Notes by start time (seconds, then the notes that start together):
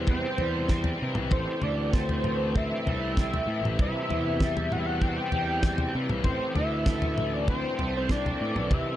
Already playing: E2 C3 E3 G3
0.07 C4 C5, kick, floor tom
0.38 E2 G3, floor tom
0.68 C4, kick, snare
0.84 floor tom
1.01 C3 E3
1.15 C2, mid tom
1.31 A1 A2 C5, kick, floor tom
1.62 D2 E3 D5, floor tom
1.93 A3 C5, kick, snare
2.09 floor tom
2.24 E3, mid tom
2.55 C4 E5, kick, floor tom, mid tom
2.86 C2 A3, floor tom
3.17 C4, kick, snare
3.34 floor tom
3.47 A2 E3
3.61 A1, mid tom
3.78 C2 C3 E5, kick, floor tom
4.08 E2 E3, floor tom
4.40 G3, kick, snare
4.57 floor tom
4.72 E3 F#5, mid tom
4.79 E5
4.86 F#5
5.01 C4 G5, kick, floor tom
5.08 F#5
5.17 G5
5.32 E2 G3, floor tom
5.63 C4, kick, snare
5.78 floor tom
5.94 C3 E3
6.09 C2, mid tom
6.24 A1 A2 C5, kick, floor tom
6.55 D2 E3 E5, floor tom
6.86 A3, kick, snare
7.02 floor tom
7.17 E3, mid tom
7.33 D5
7.47 C4 C5, kick, floor tom, mid tom
7.78 C2 A3, floor tom
7.97 C5
8.08 C4 D5, kick, snare
8.26 floor tom
8.39 A2 E3
8.55 B1, mid tom
8.69 C2 C3, kick, floor tom
8.74 E5